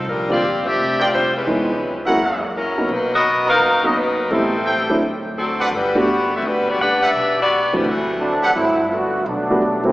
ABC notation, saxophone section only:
X:1
M:4/4
L:1/8
Q:"Swing" 1/4=170
K:G
V:1 name="Saxophone section"
[G,D=F_B] [CFGd]2 [DGce]2 [CFGd] [G,DFc] [_A,^CE=B]- | [_A,^CEB]3 z3 [F,CE^A]2 | [F,^A,^DB] [B,F^A^d]2 [DAB=f]2 [B,^FAd] [F,DAB]2 | [G,CEA]3 z3 [F,CDA]2 |
[G,DFB] [B,FGd]2 [CFAe] [G,DFB] [B,FGd] [DGBf] [DGBe]- | [DGBe] [B,FGd]2 [G,DFB] [E,A,CF]3 z | z8 |]